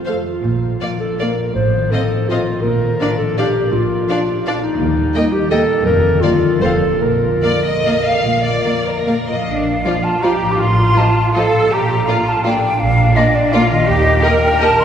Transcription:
Already playing: harp F3 A3 C4 F4
0.05 viola section A3, harp A4, violin section C5 F5
0.25 clarinet F4, harp F4
0.43 double bass section A#1, cello section A#2, harp A#2
0.63 harp A#3
0.81 harp F3, viola section A#3, violin section D5 F5
1.00 harp D4, clarinet A4
1.19 viola section A#3, harp F4, clarinet A#4, violin section D5 F5
1.40 harp D4
1.55 double bass section A1, cello section A2, harp A2, clarinet C5
1.75 harp D#3
1.91 harp F3, viola section C4, clarinet A4, violin section D#5 F5
2.12 harp D#4
2.29 viola section C4, clarinet F4, harp F4, violin section D#5 F5
2.47 harp D#4
2.62 double bass section A#1, harp A#2, cello section A#2, clarinet A#4
2.81 harp A#3
3.01 harp F3, viola section D4, violin section D5 F5
3.18 harp D4, clarinet A4
3.38 viola section D4, clarinet G4, harp A#4, violin section D5 F5
3.55 harp D4
3.72 double bass section A#1, harp A#2, cello section A#2, clarinet F4
3.89 harp A#3
4.07 harp F3, viola section D4, violin section D5 F5
4.27 harp D4
4.44 viola section D4, harp A#4, violin section D5 F5
4.62 harp D4, clarinet D#4
4.79 double bass section D#2, cello section D#2, harp D#3
4.96 harp G3
5.14 viola section A#3, harp D#4, violin section D#5 G5
5.33 clarinet G4, harp A#4
5.51 viola section A#3, harp G4, clarinet A4, violin section D#5 G5
5.70 harp A#4
5.85 double bass section F1, cello section F2, harp F2, clarinet A#4
6.05 harp D3
6.22 harp F3, viola section A#3, clarinet F4, violin section D5 F5
6.42 harp D4
6.62 double bass section F1, cello section F2, harp F2, viola section C4, clarinet A4, violin section C5 F5
6.82 harp F4 C5
7.01 double bass section A#1, harp A#2, cello section A#2, clarinet A#4
7.21 harp A#3
7.42 harp F3, viola section A#3, violin section D5 F5
7.64 harp F4, violin section D#5
7.85 viola section A#3, harp D5, violin section F5
8.04 harp F4, violin section F5
8.24 double bass section A#1, harp A#2, cello section A#2
8.44 harp A#3, violin section D5
8.64 harp F3, viola section A#3, violin section F5
8.86 harp F4, violin section A#4
9.07 viola section A#3, harp D5, violin section F5
9.29 harp A#2 F4, violin section D#5, flute F5
9.35 harp F3
9.39 harp F4
9.44 harp D5
9.48 double bass section A#1, cello section D4
9.85 viola section F3, cello section F4, violin section F4 D5
10.04 flute A5
10.23 viola section F3, violin section F4 D5, cello section G4, flute A#5
10.41 harp A2
10.46 harp F3
10.50 harp F4, flute D6
10.54 harp D#5
10.60 double bass section A1, cello section F4, flute C6
10.96 viola section F3, violin section F4 D#5, flute A5
11.34 viola section F3, violin section F4 D#5, cello section A4, flute F5
11.54 harp A#2
11.59 harp A#3
11.63 harp F4
11.67 double bass section A#1, harp D5
11.72 cello section G4, flute A#5
12.08 viola section A#3, violin section F4 D5, cello section F4
12.28 flute A5
12.45 viola section A#3, cello section D4, violin section F4 D5, flute G5
12.80 double bass section A#1, cello section D4, flute F5
13.16 viola section A#3, violin section F4 D5, flute D#5
13.35 flute D5
13.53 viola section A#3, violin section F4 D5, cello section F4, flute F5
13.71 harp D#3, flute D#5
13.75 harp A#3
13.80 harp G4
13.84 harp D#5
13.89 double bass section D#2, cello section G4
14.23 viola section A#3, violin section G4 D#5, cello section A#4
14.43 flute G5
14.59 viola section A#3, violin section G4 D#5, flute A5
14.80 flute C6

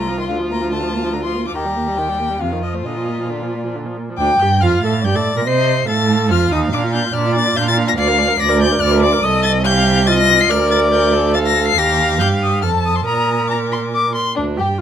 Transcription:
Already playing: cello C2, violin F4
0.00 violin A#5
0.07 viola F3
0.17 viola D#3, violin C6
0.29 cello D2, viola D3, violin F5
0.39 viola F3
0.50 viola A#3, violin A#5
0.61 viola F3
0.72 viola D3, violin A5
0.83 viola F3
0.93 viola A#3
1.03 viola F3
1.13 viola D3, violin A#5
1.24 viola F3, violin C6
1.35 viola A#3
1.46 viola F3, violin D6
1.55 cello D#2, viola D#3, violin G4 A#5
1.65 viola G3
1.76 viola A#3
1.88 viola G3
1.98 viola D#3, violin G5
2.08 viola G3
2.19 viola A#3
2.29 viola G3
2.41 cello F2, viola C3, violin F4 F5
2.52 viola D#3
2.63 viola F3, violin D#5
2.74 viola A3, violin C5
2.85 cello A#2, viola D3, violin D#5
2.97 viola F3
3.08 viola A#3
3.19 viola F3
3.29 viola D3, violin D5
3.42 viola F3
3.54 viola A#3
3.64 viola F3
3.75 viola D3
3.86 viola F3
3.97 viola A#3
4.09 viola F3
4.18 cello D2, viola D4, violin G5 D6
4.39 cello G2, viola G4, violin G6
4.61 cello F2, viola F4, violin F5 F6
4.82 cello A2, viola A4, violin A6
5.04 cello G2, viola G4, violin D5 G6
5.14 cello A2, viola A4, violin A6
5.36 cello A#2, viola A#4, violin A#6
5.46 cello C3, viola C5, violin D#5 C7
5.88 cello A2, viola A4, violin F5 A6
6.31 cello F2, viola F4, violin F6
6.51 cello D#2, viola D#4, violin D#6
6.72 cello A#2, viola D4, violin D6
6.83 viola F4
6.94 viola D4, violin G6
7.05 viola F4
7.14 cello A#2, viola D4, violin D5 F6
7.26 viola F4
7.35 viola D4, violin A6
7.47 viola F4
7.56 cello A#2, viola D4, violin F5 G6
7.67 viola F4, violin A6
7.78 viola D4
7.88 viola F4, violin A#6
7.98 cello D2, viola D5, violin F5 C7
8.08 viola A#4
8.18 viola D5
8.28 viola A#4
8.39 cello D2, viola D5, violin D5 A#6
8.49 viola A#4
8.60 viola D5, violin G6
8.71 viola A#4
8.81 cello D2, viola D5, violin F6
8.91 viola A#4
9.02 viola D5, violin D6
9.12 viola A#4
9.23 cello C2, viola A4, violin D#5 D#6
9.43 violin A6
9.65 viola G4, violin F5 G6
10.07 viola F4, violin D#5 A6
10.19 violin A#6
10.41 violin C7
10.50 cello D2, viola A#4, violin D5 F6
10.71 violin A6
10.92 viola A#4, violin G6
11.13 viola A4
11.34 violin F5 A6
11.46 violin A#6
11.67 violin C7
11.77 cello D#2, viola G4, violin A#6
12.19 cello G2, viola G4, violin G6
12.42 violin D#6
12.62 cello F2, viola A4, violin A5 F6
12.85 violin D#6
12.95 violin C6
13.05 cello A#2, viola A#4, violin A#5 D#6
13.48 violin A#5 D6
13.72 violin C6
13.94 violin D6
14.15 violin C6
14.36 cello D2, viola D4, violin D4 D5
14.57 cello G2, viola G4, violin G4 G5
14.78 viola F4

